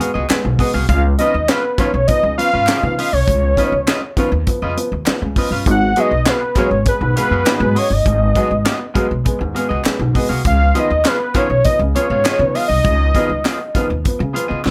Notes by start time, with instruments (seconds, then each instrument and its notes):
0.00 clean electric guitar B3 F#4 G#4 F5, closed hi-hat
0.14 upright bass C#2, clean electric guitar B3 F#4 G#4 D#5
0.29 upright piano G#3 B3, muted clean electric guitar stroke, muted upright bass stroke, snare, clap, closed hi-hat
0.45 upright bass B1, upright piano G#2 D#3, muted clean electric guitar stroke
0.59 upright piano G#3 B3, clean electric guitar B3 F#4 G#4 D#5, kick, open hi-hat
0.74 upright bass C2, clean electric guitar B3 F#4 G#4 F5
0.89 upright bass C#2, upright piano C#3, analog synth lead F5, kick, closed hi-hat
1.04 upright piano F3 B3
1.18 upright piano D#3 F3 B3, clean electric guitar C#4 F4 B4 D#5, analog synth lead D#5, closed hi-hat
1.34 upright bass D#2
1.48 clean electric guitar C#4 F4 B4 F5, analog synth lead B4, snare, clap, closed hi-hat
1.65 muted clean electric guitar stroke
1.78 upright piano D#3 F3 B3, clean electric guitar C#4 F4 B4 F5, analog synth lead C#5, muted upright bass stroke, kick, clap, closed hi-hat
1.94 upright bass B1, muted clean electric guitar stroke
2.08 upright piano F3 B3, analog synth lead D#5, muted clean electric guitar stroke, kick, closed hi-hat
2.23 upright bass C#2, upright piano C#3, muted clean electric guitar stroke
2.38 upright piano F3 B3, clean electric guitar C#4 F4 B4 F5, analog synth lead F5, closed hi-hat
2.53 upright bass G#2, clean electric guitar C#4 F4 B4 F5
2.67 upright piano C#3, snare, clap, closed hi-hat
2.69 clean electric guitar C#4 F4 B4 D#5, clap
2.82 upright bass C#3, upright piano D#3 F3 B3, muted clean electric guitar stroke
2.97 upright piano F3 B3, clean electric guitar C#4 F4 B4 D#5, analog synth lead F5, open hi-hat
3.12 upright bass C2, analog synth lead C#5, muted clean electric guitar stroke
3.28 upright bass C#2, upright piano C#3, kick, closed hi-hat
3.43 upright piano F3 B3
3.57 upright piano D#3 F3 B3, clean electric guitar C#4 F4 B4 D#5, kick, closed hi-hat
3.72 upright bass C#2
3.87 clean electric guitar C#4 F4 B4 D#5, snare, clap, closed hi-hat
4.03 muted clean electric guitar stroke
4.17 upright piano D#3 F3 B3, clean electric guitar C#4 F4 B4 F5, muted upright bass stroke, kick, closed hi-hat
4.32 upright bass D#2
4.46 upright piano F3 B3, muted clean electric guitar stroke, kick, closed hi-hat
4.62 upright bass F2, upright piano C#3, clean electric guitar C#4 F4 B4 D#5
4.76 upright piano F3 B3, muted clean electric guitar stroke, closed hi-hat
4.92 upright bass D#2, muted clean electric guitar stroke
5.06 upright piano F3, muted clean electric guitar stroke, snare, clap, closed hi-hat
5.07 upright piano B3, muted upright bass stroke, clap
5.22 upright bass C#2, upright piano C#3, muted clean electric guitar stroke
5.36 upright piano F3 B3, clean electric guitar C#4 F4 B4 D#5, kick, open hi-hat
5.51 upright bass G1, clean electric guitar C#4 F4 B4 F5
5.66 upright bass G#1, upright piano G#2 D#3, kick, closed hi-hat
5.71 analog synth lead F#5
5.82 upright piano G#3 B3
5.96 upright piano F#3 G#3 B3, clean electric guitar B3 F#4 G#4 D#5, analog synth lead D#5, closed hi-hat
6.11 upright bass B1
6.26 clean electric guitar B3 F#4 G#4 F5, analog synth lead B4, snare, clap, closed hi-hat
6.43 muted clean electric guitar stroke
6.55 upright piano F#3 G#3 B3, clean electric guitar B3 F#4 G#4 F5, analog synth lead C#5, muted upright bass stroke, kick, clap, closed hi-hat
6.71 upright bass G#1, muted clean electric guitar stroke
6.85 upright piano G#3 B3, analog synth lead B4, muted clean electric guitar stroke, kick, closed hi-hat
7.01 upright bass B1, upright piano G#2 D#3, muted clean electric guitar stroke
7.16 upright piano G#3 B3, clean electric guitar B3 F#4 G#4 F5, analog synth lead B4, closed hi-hat
7.31 upright bass F#2, clean electric guitar B3 F#4 G#4 F5
7.45 upright piano G#2 D#3, clean electric guitar B3 F#4 G#4 D#5, snare, clap, closed hi-hat
7.60 upright bass G#2, upright piano F#3 G#3 B3, muted clean electric guitar stroke
7.75 upright piano G#3 B3, clean electric guitar B3 F#4 G#4 D#5, analog synth lead C#5, open hi-hat
7.90 upright bass G1, analog synth lead D#5, muted clean electric guitar stroke
8.06 upright bass G#1, upright piano G#2 D#3, kick, closed hi-hat
8.22 upright piano G#3 B3
8.35 upright piano F#3 G#3 B3, clean electric guitar B3 F#4 G#4 D#5, kick, closed hi-hat
8.51 upright bass G#1
8.66 clean electric guitar B3 F#4 G#4 D#5, snare, clap, closed hi-hat
8.80 muted clean electric guitar stroke
8.94 upright piano F#3 G#3 B3, clean electric guitar B3 F#4 G#4 F5, muted upright bass stroke, kick, closed hi-hat
9.09 upright bass B1, muted clean electric guitar stroke
9.24 upright piano G#3 B3, muted clean electric guitar stroke, kick, closed hi-hat
9.39 upright bass D#2, upright piano G#2 D#3, muted clean electric guitar stroke
9.55 upright piano G#3 B3, clean electric guitar B3 F#4 G#4 F5, closed hi-hat
9.69 upright bass C#2, clean electric guitar B3 F#4 G#4 D#5
9.84 upright piano G#3, muted clean electric guitar stroke, muted upright bass stroke, snare, clap, closed hi-hat
9.86 upright piano B3, clap
9.99 upright bass B1, upright piano G#2 D#3, muted clean electric guitar stroke
10.15 upright piano G#3 B3, clean electric guitar B3 F#4 G#4 D#5, kick, open hi-hat
10.29 upright bass C2, clean electric guitar B3 F#4 G#4 F5
10.45 upright bass C#2, upright piano C#3, analog synth lead F5, kick, closed hi-hat
10.61 upright piano F3 B3
10.74 upright piano D#3 F3 B3, clean electric guitar B3 F4 G#4 D#5, analog synth lead D#5, closed hi-hat
10.90 upright bass D#2
11.04 clean electric guitar B3 F4 G#4 F5, analog synth lead B4, snare, clap, closed hi-hat
11.20 muted clean electric guitar stroke
11.34 upright piano D#3 F3 B3, clean electric guitar B3 F4 G#4 F5, analog synth lead C#5, muted upright bass stroke, kick, clap, closed hi-hat
11.50 upright bass B1, muted clean electric guitar stroke
11.64 upright piano F3 B3, analog synth lead D#5, muted clean electric guitar stroke, kick, closed hi-hat
11.79 upright bass C#2, upright piano C#3, muted clean electric guitar stroke
11.95 upright piano F3 B3, clean electric guitar B3 F4 G#4 F5, analog synth lead C#5, closed hi-hat
12.10 upright bass G#2, clean electric guitar B3 F4 G#4 F5
12.25 upright piano C#3, clean electric guitar B3 F4 G#4 D#5, snare, clap, closed hi-hat
12.39 upright bass C#3, upright piano D#3 F3 B3, muted clean electric guitar stroke
12.55 upright piano F3 B3, clean electric guitar B3 F4 G#4 D#5, analog synth lead F5, open hi-hat
12.68 upright bass C2, analog synth lead D#5, muted clean electric guitar stroke
12.84 upright bass C#2, upright piano C#3, kick, closed hi-hat
13.02 upright piano F3 B3
13.15 upright piano D#3 F3 B3, clean electric guitar B3 F4 G#4 D#5, kick, closed hi-hat
13.29 upright bass C#2
13.45 clean electric guitar B3 F4 G#4 D#5, snare, clap, closed hi-hat
13.60 muted clean electric guitar stroke
13.75 upright piano D#3 F3 B3, clean electric guitar B3 F4 G#4 F5, muted upright bass stroke, kick, closed hi-hat
13.90 upright bass D#2, muted clean electric guitar stroke
14.04 upright piano F3 B3, muted clean electric guitar stroke, kick, closed hi-hat
14.19 upright bass C#3, upright piano C#3, muted clean electric guitar stroke
14.33 upright piano F3 B3, clean electric guitar B3 F4 G#4 F5, closed hi-hat
14.48 upright bass C#3, clean electric guitar B3 F4 G#4 D#5
14.63 upright bass G#2, upright piano F3 B3, muted clean electric guitar stroke, snare, clap